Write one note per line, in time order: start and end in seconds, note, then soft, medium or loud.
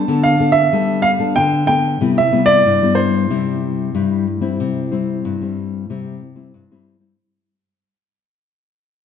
0.00 0.24 A5 loud
0.08 0.69 D3 medium
0.08 0.35 B3 medium
0.08 0.35 D4 medium
0.08 0.35 A4 medium
0.24 0.54 F5 medium
0.39 0.59 B3 medium
0.39 0.59 D4 medium
0.39 0.59 A4 medium
0.52 1.04 E5 loud
0.73 1.34 G3 medium
0.73 1.03 B3 soft
0.73 1.03 D4 medium
0.73 1.03 A4 medium
1.02 1.10 F5 loud
1.19 1.63 B3 medium
1.19 1.63 D4 medium
1.19 1.63 A4 medium
1.36 1.98 D3 medium
1.36 1.66 G5 loud
1.67 1.98 B3 medium
1.67 1.98 D4 medium
1.67 1.99 A4 medium
1.67 2.18 G5 medium
2.01 2.63 C3 medium
2.01 2.20 G3 medium
2.01 2.20 B3 medium
2.01 2.21 E4 medium
2.18 2.51 E5 medium
2.32 2.63 G3 medium
2.32 2.63 B3 medium
2.32 2.64 E4 medium
2.46 2.98 D5 loud
2.66 3.27 G2 medium
2.83 3.26 G3 medium
2.83 3.26 B3 soft
2.83 3.26 E4 medium
2.95 4.22 C5 medium
3.30 3.92 C3 medium
3.30 3.90 G3 medium
3.30 3.90 E4 medium
3.95 4.56 G2 medium
3.95 4.25 G3 medium
3.95 4.26 E4 medium
4.41 4.85 G3 medium
4.41 4.86 C4 medium
4.41 4.86 E4 medium
4.60 5.21 C3 medium
4.91 5.35 G3 medium
4.91 5.35 C4 medium
4.91 5.35 E4 medium
5.25 5.86 G2 medium
5.41 5.84 G3 medium
5.41 5.84 C4 soft
5.41 5.85 E4 soft
5.90 6.51 C3 medium
5.90 6.20 G3 medium
5.90 6.20 C4 soft
5.90 6.20 E4 medium
6.35 6.64 G3 soft
6.35 6.64 C4 soft
6.35 6.64 E4 soft
6.54 7.15 G2 medium
6.71 6.98 G3 medium
6.71 6.98 C4 medium
6.71 6.98 E4 medium
7.00 7.12 G3 medium
7.00 7.12 C4 soft
7.00 7.13 E4 medium